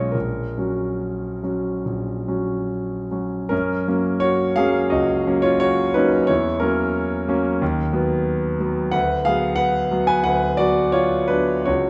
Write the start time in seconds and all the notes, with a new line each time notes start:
Already playing: B1 G#3 C#4 F4 C#5 D#5
0.12 A#1 A#4
0.58 F#3 C#4 F#4
1.43 F#3 C#4 F#4
1.85 A#1
2.28 F#3 C#4 F#4
3.11 F#3 C#4 F#4
3.49 F#2 C#4 A#4
3.88 F#3 A#3 C#4
4.20 F#4 C#5
4.56 F#3 A#3 C#4 G#4 F5
4.90 C#2 F#4 D#5
5.27 F#3 A#3 C#4
5.42 F4 C#5
5.60 F#4 C#5
5.94 F#3 A#3 C#4 D#4 B4
6.27 E2 E4 C#5
6.60 F#3 A#3 C#4 A#4
7.28 F#3 A#3 C#4
7.62 D#2
7.93 F#3 B3
8.60 F#3 B3
8.92 D2 B4 F#5
9.25 F#3 B3 G#4 F5
9.56 B4 F#5
9.91 F#3 B3
10.07 B4 G#5
10.24 D2 B4 F#5
10.57 F#3 B3 F#4 D5
10.92 F4 C#5
11.28 F#3 B3 D4 B4
11.65 C#2 F#4 C#5